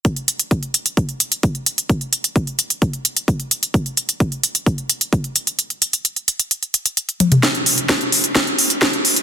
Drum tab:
HH |xxxxxxxxxxxxxxxx|xxxxxxxxxxxxxxxx|xxxxxxxxxxxxxxxx|xxxxxxxxxxxxxxxx|
SD |----------------|----------------|----------------|----------------|
T1 |----------------|----------------|----------------|--------------o-|
T2 |----------------|----------------|----------------|---------------o|
BD |o---o---o---o---|o---o---o---o---|o---o---o---o---|----------------|

HH |xxoxxxoxxxoxxxox|
SD |o---o---o---o---|
T1 |----------------|
T2 |----------------|
BD |o---o---o---o---|